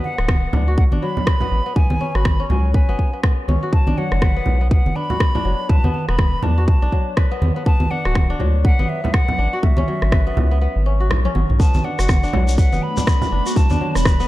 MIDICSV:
0, 0, Header, 1, 7, 480
1, 0, Start_track
1, 0, Tempo, 491803
1, 1720, Time_signature, 4, 2, 24, 8
1, 13935, End_track
2, 0, Start_track
2, 0, Title_t, "Flute"
2, 0, Program_c, 0, 73
2, 38, Note_on_c, 0, 78, 88
2, 720, Note_off_c, 0, 78, 0
2, 763, Note_on_c, 0, 78, 86
2, 821, Note_off_c, 0, 78, 0
2, 999, Note_on_c, 0, 83, 104
2, 1718, Note_on_c, 0, 80, 100
2, 1732, Note_off_c, 0, 83, 0
2, 2101, Note_on_c, 0, 83, 98
2, 2116, Note_off_c, 0, 80, 0
2, 2435, Note_off_c, 0, 83, 0
2, 2441, Note_on_c, 0, 80, 84
2, 2663, Note_off_c, 0, 80, 0
2, 2682, Note_on_c, 0, 80, 78
2, 3127, Note_off_c, 0, 80, 0
2, 3642, Note_on_c, 0, 81, 92
2, 3881, Note_on_c, 0, 78, 90
2, 3896, Note_off_c, 0, 81, 0
2, 4594, Note_off_c, 0, 78, 0
2, 4600, Note_on_c, 0, 78, 92
2, 4840, Note_on_c, 0, 83, 113
2, 4854, Note_off_c, 0, 78, 0
2, 5558, Note_on_c, 0, 81, 106
2, 5572, Note_off_c, 0, 83, 0
2, 5933, Note_off_c, 0, 81, 0
2, 5939, Note_on_c, 0, 83, 100
2, 6278, Note_on_c, 0, 81, 89
2, 6293, Note_off_c, 0, 83, 0
2, 6512, Note_off_c, 0, 81, 0
2, 6518, Note_on_c, 0, 81, 82
2, 6965, Note_off_c, 0, 81, 0
2, 7477, Note_on_c, 0, 81, 110
2, 7717, Note_on_c, 0, 78, 97
2, 7731, Note_off_c, 0, 81, 0
2, 8198, Note_off_c, 0, 78, 0
2, 8437, Note_on_c, 0, 78, 106
2, 8678, Note_on_c, 0, 76, 94
2, 8692, Note_off_c, 0, 78, 0
2, 8916, Note_on_c, 0, 78, 111
2, 8931, Note_off_c, 0, 76, 0
2, 9390, Note_off_c, 0, 78, 0
2, 9396, Note_on_c, 0, 76, 102
2, 11039, Note_off_c, 0, 76, 0
2, 11319, Note_on_c, 0, 81, 93
2, 11559, Note_on_c, 0, 78, 86
2, 11574, Note_off_c, 0, 81, 0
2, 12274, Note_off_c, 0, 78, 0
2, 12280, Note_on_c, 0, 78, 92
2, 12520, Note_on_c, 0, 83, 110
2, 12535, Note_off_c, 0, 78, 0
2, 13241, Note_on_c, 0, 81, 104
2, 13256, Note_off_c, 0, 83, 0
2, 13620, Note_on_c, 0, 83, 102
2, 13635, Note_off_c, 0, 81, 0
2, 13935, Note_off_c, 0, 83, 0
2, 13935, End_track
3, 0, Start_track
3, 0, Title_t, "Kora"
3, 0, Program_c, 1, 46
3, 0, Note_on_c, 1, 59, 95
3, 0, Note_on_c, 1, 62, 92
3, 0, Note_on_c, 1, 66, 68
3, 0, Note_on_c, 1, 71, 77
3, 176, Note_off_c, 1, 59, 0
3, 180, Note_on_c, 1, 59, 68
3, 276, Note_off_c, 1, 59, 0
3, 279, Note_on_c, 1, 59, 73
3, 515, Note_off_c, 1, 62, 0
3, 519, Note_on_c, 1, 62, 75
3, 649, Note_off_c, 1, 66, 0
3, 661, Note_on_c, 1, 66, 72
3, 896, Note_off_c, 1, 62, 0
3, 900, Note_on_c, 1, 62, 91
3, 998, Note_off_c, 1, 71, 0
3, 999, Note_on_c, 1, 54, 68
3, 1239, Note_on_c, 1, 71, 73
3, 1375, Note_off_c, 1, 59, 0
3, 1379, Note_on_c, 1, 59, 95
3, 1616, Note_off_c, 1, 59, 0
3, 1620, Note_on_c, 1, 59, 74
3, 1715, Note_off_c, 1, 59, 0
3, 1719, Note_on_c, 1, 59, 76
3, 1768, Note_off_c, 1, 54, 0
3, 1958, Note_on_c, 1, 61, 70
3, 2016, Note_off_c, 1, 62, 0
3, 2088, Note_off_c, 1, 66, 0
3, 2100, Note_on_c, 1, 66, 66
3, 2336, Note_off_c, 1, 61, 0
3, 2340, Note_on_c, 1, 61, 94
3, 2438, Note_on_c, 1, 54, 70
3, 2439, Note_off_c, 1, 71, 0
3, 2677, Note_on_c, 1, 71, 73
3, 2815, Note_off_c, 1, 59, 0
3, 2819, Note_on_c, 1, 59, 97
3, 3054, Note_off_c, 1, 59, 0
3, 3058, Note_on_c, 1, 59, 69
3, 3153, Note_off_c, 1, 59, 0
3, 3156, Note_on_c, 1, 59, 76
3, 3393, Note_off_c, 1, 61, 0
3, 3397, Note_on_c, 1, 61, 68
3, 3527, Note_off_c, 1, 66, 0
3, 3539, Note_on_c, 1, 66, 71
3, 3688, Note_off_c, 1, 54, 0
3, 3780, Note_on_c, 1, 62, 93
3, 3838, Note_off_c, 1, 61, 0
3, 3877, Note_off_c, 1, 71, 0
3, 3879, Note_on_c, 1, 54, 68
3, 4118, Note_on_c, 1, 71, 73
3, 4256, Note_off_c, 1, 59, 0
3, 4260, Note_on_c, 1, 59, 92
3, 4495, Note_off_c, 1, 59, 0
3, 4498, Note_on_c, 1, 59, 72
3, 4593, Note_off_c, 1, 59, 0
3, 4597, Note_on_c, 1, 59, 70
3, 4834, Note_off_c, 1, 62, 0
3, 4838, Note_on_c, 1, 62, 71
3, 4966, Note_off_c, 1, 66, 0
3, 4978, Note_on_c, 1, 66, 67
3, 5216, Note_off_c, 1, 62, 0
3, 5219, Note_on_c, 1, 62, 92
3, 5306, Note_off_c, 1, 54, 0
3, 5318, Note_off_c, 1, 71, 0
3, 5318, Note_on_c, 1, 54, 68
3, 5559, Note_on_c, 1, 71, 81
3, 5608, Note_off_c, 1, 54, 0
3, 5696, Note_off_c, 1, 59, 0
3, 5700, Note_on_c, 1, 59, 94
3, 5935, Note_off_c, 1, 59, 0
3, 5939, Note_on_c, 1, 59, 72
3, 6034, Note_off_c, 1, 59, 0
3, 6274, Note_off_c, 1, 62, 0
3, 6278, Note_on_c, 1, 62, 76
3, 6405, Note_off_c, 1, 66, 0
3, 6419, Note_on_c, 1, 66, 73
3, 6655, Note_off_c, 1, 62, 0
3, 6659, Note_on_c, 1, 62, 94
3, 6759, Note_off_c, 1, 71, 0
3, 6759, Note_on_c, 1, 54, 69
3, 6997, Note_on_c, 1, 71, 80
3, 7139, Note_on_c, 1, 59, 96
3, 7375, Note_off_c, 1, 59, 0
3, 7379, Note_on_c, 1, 59, 74
3, 7473, Note_off_c, 1, 59, 0
3, 7477, Note_on_c, 1, 59, 80
3, 7528, Note_off_c, 1, 54, 0
3, 7715, Note_off_c, 1, 62, 0
3, 7719, Note_on_c, 1, 62, 75
3, 7846, Note_off_c, 1, 66, 0
3, 7858, Note_on_c, 1, 66, 73
3, 8096, Note_off_c, 1, 62, 0
3, 8100, Note_on_c, 1, 62, 99
3, 8197, Note_off_c, 1, 71, 0
3, 8199, Note_on_c, 1, 54, 74
3, 8439, Note_on_c, 1, 71, 74
3, 8577, Note_off_c, 1, 59, 0
3, 8581, Note_on_c, 1, 59, 94
3, 8816, Note_off_c, 1, 59, 0
3, 8820, Note_on_c, 1, 59, 69
3, 8915, Note_off_c, 1, 59, 0
3, 8919, Note_on_c, 1, 59, 73
3, 9155, Note_off_c, 1, 62, 0
3, 9159, Note_on_c, 1, 62, 68
3, 9285, Note_off_c, 1, 66, 0
3, 9302, Note_on_c, 1, 66, 76
3, 9448, Note_off_c, 1, 54, 0
3, 9542, Note_on_c, 1, 61, 95
3, 9601, Note_off_c, 1, 62, 0
3, 9639, Note_off_c, 1, 71, 0
3, 9640, Note_on_c, 1, 54, 69
3, 9879, Note_on_c, 1, 71, 76
3, 10017, Note_off_c, 1, 59, 0
3, 10021, Note_on_c, 1, 59, 93
3, 10256, Note_off_c, 1, 59, 0
3, 10260, Note_on_c, 1, 59, 72
3, 10356, Note_off_c, 1, 59, 0
3, 10360, Note_on_c, 1, 59, 75
3, 10595, Note_off_c, 1, 61, 0
3, 10599, Note_on_c, 1, 61, 71
3, 10729, Note_off_c, 1, 66, 0
3, 10740, Note_on_c, 1, 66, 68
3, 10976, Note_off_c, 1, 61, 0
3, 10980, Note_on_c, 1, 61, 93
3, 11068, Note_off_c, 1, 54, 0
3, 11079, Note_off_c, 1, 71, 0
3, 11079, Note_on_c, 1, 54, 72
3, 11315, Note_off_c, 1, 59, 0
3, 11319, Note_on_c, 1, 59, 78
3, 11368, Note_off_c, 1, 54, 0
3, 11558, Note_on_c, 1, 62, 69
3, 11617, Note_off_c, 1, 61, 0
3, 11694, Note_off_c, 1, 66, 0
3, 11698, Note_on_c, 1, 66, 69
3, 11935, Note_off_c, 1, 62, 0
3, 11939, Note_on_c, 1, 62, 96
3, 12038, Note_on_c, 1, 54, 74
3, 12279, Note_on_c, 1, 71, 75
3, 12417, Note_off_c, 1, 59, 0
3, 12421, Note_on_c, 1, 59, 95
3, 12657, Note_off_c, 1, 62, 0
3, 12661, Note_on_c, 1, 62, 69
3, 12755, Note_off_c, 1, 59, 0
3, 12759, Note_on_c, 1, 59, 76
3, 12994, Note_off_c, 1, 62, 0
3, 12997, Note_on_c, 1, 62, 71
3, 13125, Note_off_c, 1, 66, 0
3, 13138, Note_on_c, 1, 66, 71
3, 13288, Note_off_c, 1, 54, 0
3, 13374, Note_off_c, 1, 62, 0
3, 13378, Note_on_c, 1, 62, 97
3, 13477, Note_on_c, 1, 54, 69
3, 13479, Note_off_c, 1, 71, 0
3, 13718, Note_on_c, 1, 71, 75
3, 13854, Note_off_c, 1, 59, 0
3, 13858, Note_on_c, 1, 59, 101
3, 13935, Note_off_c, 1, 54, 0
3, 13935, Note_off_c, 1, 59, 0
3, 13935, Note_off_c, 1, 62, 0
3, 13935, Note_off_c, 1, 66, 0
3, 13935, Note_off_c, 1, 71, 0
3, 13935, End_track
4, 0, Start_track
4, 0, Title_t, "Ambient pad"
4, 0, Program_c, 2, 92
4, 11321, Note_on_c, 2, 59, 71
4, 11322, Note_on_c, 2, 57, 79
4, 11322, Note_on_c, 2, 62, 86
4, 13221, Note_off_c, 2, 62, 0
4, 13222, Note_off_c, 2, 57, 0
4, 13242, Note_on_c, 2, 52, 78
4, 13242, Note_on_c, 2, 66, 72
4, 13243, Note_on_c, 2, 69, 88
4, 13935, Note_off_c, 2, 52, 0
4, 13935, Note_off_c, 2, 59, 0
4, 13935, Note_off_c, 2, 66, 0
4, 13935, Note_off_c, 2, 69, 0
4, 13935, End_track
5, 0, Start_track
5, 0, Title_t, "Analog synth bass"
5, 0, Program_c, 3, 38
5, 181, Note_on_c, 3, 26, 98
5, 462, Note_off_c, 3, 26, 0
5, 518, Note_on_c, 3, 38, 90
5, 818, Note_off_c, 3, 38, 0
5, 900, Note_on_c, 3, 33, 85
5, 963, Note_off_c, 3, 33, 0
5, 1477, Note_on_c, 3, 33, 93
5, 1569, Note_off_c, 3, 33, 0
5, 1859, Note_on_c, 3, 37, 100
5, 1923, Note_off_c, 3, 37, 0
5, 2098, Note_on_c, 3, 32, 103
5, 2381, Note_off_c, 3, 32, 0
5, 2435, Note_on_c, 3, 37, 93
5, 2737, Note_off_c, 3, 37, 0
5, 2818, Note_on_c, 3, 32, 83
5, 2883, Note_off_c, 3, 32, 0
5, 3397, Note_on_c, 3, 37, 82
5, 3488, Note_off_c, 3, 37, 0
5, 3776, Note_on_c, 3, 35, 98
5, 3841, Note_off_c, 3, 35, 0
5, 4019, Note_on_c, 3, 30, 96
5, 4301, Note_off_c, 3, 30, 0
5, 4356, Note_on_c, 3, 35, 91
5, 4657, Note_off_c, 3, 35, 0
5, 4738, Note_on_c, 3, 30, 86
5, 4802, Note_off_c, 3, 30, 0
5, 5319, Note_on_c, 3, 30, 91
5, 5409, Note_off_c, 3, 30, 0
5, 5700, Note_on_c, 3, 40, 103
5, 5763, Note_off_c, 3, 40, 0
5, 5939, Note_on_c, 3, 28, 95
5, 6222, Note_off_c, 3, 28, 0
5, 6277, Note_on_c, 3, 40, 90
5, 6578, Note_off_c, 3, 40, 0
5, 6659, Note_on_c, 3, 35, 87
5, 6723, Note_off_c, 3, 35, 0
5, 7239, Note_on_c, 3, 40, 84
5, 7329, Note_off_c, 3, 40, 0
5, 7620, Note_on_c, 3, 38, 96
5, 7683, Note_off_c, 3, 38, 0
5, 7860, Note_on_c, 3, 26, 99
5, 8142, Note_off_c, 3, 26, 0
5, 8200, Note_on_c, 3, 38, 88
5, 8499, Note_off_c, 3, 38, 0
5, 8581, Note_on_c, 3, 33, 84
5, 8644, Note_off_c, 3, 33, 0
5, 9161, Note_on_c, 3, 33, 87
5, 9250, Note_off_c, 3, 33, 0
5, 9541, Note_on_c, 3, 37, 100
5, 9604, Note_off_c, 3, 37, 0
5, 9781, Note_on_c, 3, 32, 98
5, 10063, Note_off_c, 3, 32, 0
5, 10120, Note_on_c, 3, 37, 89
5, 10419, Note_off_c, 3, 37, 0
5, 10501, Note_on_c, 3, 32, 84
5, 10840, Note_on_c, 3, 35, 82
5, 10855, Note_off_c, 3, 32, 0
5, 11008, Note_off_c, 3, 35, 0
5, 11081, Note_on_c, 3, 32, 102
5, 11170, Note_off_c, 3, 32, 0
5, 11220, Note_on_c, 3, 35, 89
5, 11358, Note_off_c, 3, 35, 0
5, 11461, Note_on_c, 3, 35, 100
5, 11524, Note_off_c, 3, 35, 0
5, 11702, Note_on_c, 3, 30, 96
5, 11983, Note_off_c, 3, 30, 0
5, 12040, Note_on_c, 3, 35, 91
5, 12339, Note_off_c, 3, 35, 0
5, 12421, Note_on_c, 3, 30, 87
5, 12484, Note_off_c, 3, 30, 0
5, 12999, Note_on_c, 3, 30, 91
5, 13090, Note_off_c, 3, 30, 0
5, 13381, Note_on_c, 3, 40, 98
5, 13444, Note_off_c, 3, 40, 0
5, 13620, Note_on_c, 3, 28, 98
5, 13902, Note_off_c, 3, 28, 0
5, 13935, End_track
6, 0, Start_track
6, 0, Title_t, "Shekere"
6, 11327, Note_on_c, 9, 82, 69
6, 11425, Note_off_c, 9, 82, 0
6, 11459, Note_on_c, 9, 82, 37
6, 11556, Note_off_c, 9, 82, 0
6, 11707, Note_on_c, 9, 82, 69
6, 11795, Note_off_c, 9, 82, 0
6, 11795, Note_on_c, 9, 82, 56
6, 11893, Note_off_c, 9, 82, 0
6, 11939, Note_on_c, 9, 82, 38
6, 12037, Note_off_c, 9, 82, 0
6, 12182, Note_on_c, 9, 82, 75
6, 12280, Note_off_c, 9, 82, 0
6, 12280, Note_on_c, 9, 82, 62
6, 12377, Note_off_c, 9, 82, 0
6, 12421, Note_on_c, 9, 82, 34
6, 12519, Note_off_c, 9, 82, 0
6, 12660, Note_on_c, 9, 82, 79
6, 12757, Note_off_c, 9, 82, 0
6, 12758, Note_on_c, 9, 82, 67
6, 12855, Note_off_c, 9, 82, 0
6, 12903, Note_on_c, 9, 82, 33
6, 13001, Note_off_c, 9, 82, 0
6, 13142, Note_on_c, 9, 82, 75
6, 13240, Note_off_c, 9, 82, 0
6, 13240, Note_on_c, 9, 82, 68
6, 13337, Note_off_c, 9, 82, 0
6, 13368, Note_on_c, 9, 82, 42
6, 13466, Note_off_c, 9, 82, 0
6, 13625, Note_on_c, 9, 82, 69
6, 13720, Note_off_c, 9, 82, 0
6, 13720, Note_on_c, 9, 82, 61
6, 13817, Note_off_c, 9, 82, 0
6, 13860, Note_on_c, 9, 82, 37
6, 13935, Note_off_c, 9, 82, 0
6, 13935, End_track
7, 0, Start_track
7, 0, Title_t, "Drums"
7, 38, Note_on_c, 9, 63, 63
7, 135, Note_off_c, 9, 63, 0
7, 180, Note_on_c, 9, 37, 57
7, 277, Note_off_c, 9, 37, 0
7, 278, Note_on_c, 9, 36, 110
7, 279, Note_on_c, 9, 37, 96
7, 282, Note_on_c, 9, 63, 78
7, 376, Note_off_c, 9, 36, 0
7, 376, Note_off_c, 9, 37, 0
7, 380, Note_off_c, 9, 63, 0
7, 518, Note_on_c, 9, 64, 99
7, 615, Note_off_c, 9, 64, 0
7, 758, Note_on_c, 9, 36, 114
7, 856, Note_off_c, 9, 36, 0
7, 895, Note_on_c, 9, 63, 81
7, 992, Note_off_c, 9, 63, 0
7, 1142, Note_on_c, 9, 64, 84
7, 1238, Note_on_c, 9, 36, 108
7, 1239, Note_off_c, 9, 64, 0
7, 1239, Note_on_c, 9, 37, 100
7, 1336, Note_off_c, 9, 36, 0
7, 1336, Note_off_c, 9, 37, 0
7, 1371, Note_on_c, 9, 64, 94
7, 1468, Note_off_c, 9, 64, 0
7, 1718, Note_on_c, 9, 36, 109
7, 1725, Note_on_c, 9, 64, 73
7, 1816, Note_off_c, 9, 36, 0
7, 1823, Note_off_c, 9, 64, 0
7, 1856, Note_on_c, 9, 63, 111
7, 1954, Note_off_c, 9, 63, 0
7, 1960, Note_on_c, 9, 63, 67
7, 2057, Note_off_c, 9, 63, 0
7, 2100, Note_on_c, 9, 37, 57
7, 2197, Note_off_c, 9, 37, 0
7, 2197, Note_on_c, 9, 37, 100
7, 2198, Note_on_c, 9, 36, 111
7, 2203, Note_on_c, 9, 63, 80
7, 2295, Note_off_c, 9, 37, 0
7, 2296, Note_off_c, 9, 36, 0
7, 2301, Note_off_c, 9, 63, 0
7, 2439, Note_on_c, 9, 64, 85
7, 2537, Note_off_c, 9, 64, 0
7, 2677, Note_on_c, 9, 36, 110
7, 2775, Note_off_c, 9, 36, 0
7, 2918, Note_on_c, 9, 36, 59
7, 3015, Note_off_c, 9, 36, 0
7, 3157, Note_on_c, 9, 37, 94
7, 3158, Note_on_c, 9, 36, 108
7, 3255, Note_off_c, 9, 36, 0
7, 3255, Note_off_c, 9, 37, 0
7, 3403, Note_on_c, 9, 63, 87
7, 3501, Note_off_c, 9, 63, 0
7, 3637, Note_on_c, 9, 36, 105
7, 3735, Note_off_c, 9, 36, 0
7, 3777, Note_on_c, 9, 63, 94
7, 3874, Note_off_c, 9, 63, 0
7, 3884, Note_on_c, 9, 63, 59
7, 3981, Note_off_c, 9, 63, 0
7, 4019, Note_on_c, 9, 37, 54
7, 4117, Note_off_c, 9, 37, 0
7, 4117, Note_on_c, 9, 36, 110
7, 4118, Note_on_c, 9, 37, 91
7, 4119, Note_on_c, 9, 63, 84
7, 4215, Note_off_c, 9, 36, 0
7, 4216, Note_off_c, 9, 37, 0
7, 4217, Note_off_c, 9, 63, 0
7, 4350, Note_on_c, 9, 64, 81
7, 4447, Note_off_c, 9, 64, 0
7, 4598, Note_on_c, 9, 36, 114
7, 4695, Note_off_c, 9, 36, 0
7, 4744, Note_on_c, 9, 63, 82
7, 4842, Note_off_c, 9, 63, 0
7, 4977, Note_on_c, 9, 64, 77
7, 5075, Note_off_c, 9, 64, 0
7, 5078, Note_on_c, 9, 36, 106
7, 5079, Note_on_c, 9, 37, 96
7, 5176, Note_off_c, 9, 36, 0
7, 5176, Note_off_c, 9, 37, 0
7, 5225, Note_on_c, 9, 64, 85
7, 5322, Note_off_c, 9, 64, 0
7, 5558, Note_on_c, 9, 36, 104
7, 5564, Note_on_c, 9, 64, 78
7, 5655, Note_off_c, 9, 36, 0
7, 5661, Note_off_c, 9, 64, 0
7, 5702, Note_on_c, 9, 63, 104
7, 5798, Note_off_c, 9, 63, 0
7, 5798, Note_on_c, 9, 63, 58
7, 5896, Note_off_c, 9, 63, 0
7, 5940, Note_on_c, 9, 37, 53
7, 6036, Note_on_c, 9, 63, 79
7, 6037, Note_off_c, 9, 37, 0
7, 6037, Note_on_c, 9, 36, 110
7, 6039, Note_on_c, 9, 37, 88
7, 6134, Note_off_c, 9, 63, 0
7, 6135, Note_off_c, 9, 36, 0
7, 6136, Note_off_c, 9, 37, 0
7, 6271, Note_on_c, 9, 64, 96
7, 6368, Note_off_c, 9, 64, 0
7, 6518, Note_on_c, 9, 36, 107
7, 6615, Note_off_c, 9, 36, 0
7, 6758, Note_on_c, 9, 36, 54
7, 6855, Note_off_c, 9, 36, 0
7, 6997, Note_on_c, 9, 37, 90
7, 6998, Note_on_c, 9, 36, 105
7, 7095, Note_off_c, 9, 37, 0
7, 7096, Note_off_c, 9, 36, 0
7, 7240, Note_on_c, 9, 63, 91
7, 7338, Note_off_c, 9, 63, 0
7, 7478, Note_on_c, 9, 36, 104
7, 7576, Note_off_c, 9, 36, 0
7, 7614, Note_on_c, 9, 63, 95
7, 7711, Note_off_c, 9, 63, 0
7, 7724, Note_on_c, 9, 63, 58
7, 7821, Note_off_c, 9, 63, 0
7, 7860, Note_on_c, 9, 37, 53
7, 7954, Note_on_c, 9, 63, 82
7, 7958, Note_off_c, 9, 37, 0
7, 7958, Note_on_c, 9, 37, 87
7, 7959, Note_on_c, 9, 36, 112
7, 8052, Note_off_c, 9, 63, 0
7, 8056, Note_off_c, 9, 36, 0
7, 8056, Note_off_c, 9, 37, 0
7, 8195, Note_on_c, 9, 64, 81
7, 8292, Note_off_c, 9, 64, 0
7, 8439, Note_on_c, 9, 36, 110
7, 8537, Note_off_c, 9, 36, 0
7, 8582, Note_on_c, 9, 63, 81
7, 8679, Note_off_c, 9, 63, 0
7, 8830, Note_on_c, 9, 64, 78
7, 8919, Note_on_c, 9, 36, 103
7, 8919, Note_on_c, 9, 37, 89
7, 8927, Note_off_c, 9, 64, 0
7, 9016, Note_off_c, 9, 37, 0
7, 9017, Note_off_c, 9, 36, 0
7, 9062, Note_on_c, 9, 64, 101
7, 9159, Note_off_c, 9, 64, 0
7, 9399, Note_on_c, 9, 64, 85
7, 9400, Note_on_c, 9, 36, 105
7, 9497, Note_off_c, 9, 36, 0
7, 9497, Note_off_c, 9, 64, 0
7, 9533, Note_on_c, 9, 63, 100
7, 9630, Note_off_c, 9, 63, 0
7, 9647, Note_on_c, 9, 63, 58
7, 9745, Note_off_c, 9, 63, 0
7, 9782, Note_on_c, 9, 37, 53
7, 9879, Note_off_c, 9, 37, 0
7, 9879, Note_on_c, 9, 36, 112
7, 9879, Note_on_c, 9, 63, 78
7, 9880, Note_on_c, 9, 37, 92
7, 9977, Note_off_c, 9, 36, 0
7, 9977, Note_off_c, 9, 37, 0
7, 9977, Note_off_c, 9, 63, 0
7, 10121, Note_on_c, 9, 64, 95
7, 10218, Note_off_c, 9, 64, 0
7, 10838, Note_on_c, 9, 64, 74
7, 10840, Note_on_c, 9, 37, 92
7, 10840, Note_on_c, 9, 48, 57
7, 10936, Note_off_c, 9, 64, 0
7, 10938, Note_off_c, 9, 37, 0
7, 10938, Note_off_c, 9, 48, 0
7, 10982, Note_on_c, 9, 48, 57
7, 11078, Note_on_c, 9, 63, 82
7, 11079, Note_off_c, 9, 48, 0
7, 11176, Note_off_c, 9, 63, 0
7, 11221, Note_on_c, 9, 45, 77
7, 11319, Note_off_c, 9, 45, 0
7, 11319, Note_on_c, 9, 36, 115
7, 11416, Note_off_c, 9, 36, 0
7, 11467, Note_on_c, 9, 63, 94
7, 11556, Note_off_c, 9, 63, 0
7, 11556, Note_on_c, 9, 63, 63
7, 11654, Note_off_c, 9, 63, 0
7, 11701, Note_on_c, 9, 37, 54
7, 11798, Note_off_c, 9, 37, 0
7, 11799, Note_on_c, 9, 36, 110
7, 11800, Note_on_c, 9, 37, 91
7, 11803, Note_on_c, 9, 63, 93
7, 11896, Note_off_c, 9, 36, 0
7, 11898, Note_off_c, 9, 37, 0
7, 11900, Note_off_c, 9, 63, 0
7, 12037, Note_on_c, 9, 64, 106
7, 12135, Note_off_c, 9, 64, 0
7, 12278, Note_on_c, 9, 36, 113
7, 12376, Note_off_c, 9, 36, 0
7, 12421, Note_on_c, 9, 63, 76
7, 12518, Note_off_c, 9, 63, 0
7, 12662, Note_on_c, 9, 64, 85
7, 12758, Note_on_c, 9, 36, 111
7, 12758, Note_on_c, 9, 37, 95
7, 12760, Note_off_c, 9, 64, 0
7, 12856, Note_off_c, 9, 36, 0
7, 12856, Note_off_c, 9, 37, 0
7, 12899, Note_on_c, 9, 64, 105
7, 12996, Note_off_c, 9, 64, 0
7, 13238, Note_on_c, 9, 36, 120
7, 13239, Note_on_c, 9, 64, 85
7, 13335, Note_off_c, 9, 36, 0
7, 13337, Note_off_c, 9, 64, 0
7, 13374, Note_on_c, 9, 63, 100
7, 13471, Note_off_c, 9, 63, 0
7, 13483, Note_on_c, 9, 63, 63
7, 13581, Note_off_c, 9, 63, 0
7, 13619, Note_on_c, 9, 37, 56
7, 13717, Note_off_c, 9, 37, 0
7, 13717, Note_on_c, 9, 37, 97
7, 13718, Note_on_c, 9, 36, 120
7, 13722, Note_on_c, 9, 63, 80
7, 13814, Note_off_c, 9, 37, 0
7, 13815, Note_off_c, 9, 36, 0
7, 13820, Note_off_c, 9, 63, 0
7, 13935, End_track
0, 0, End_of_file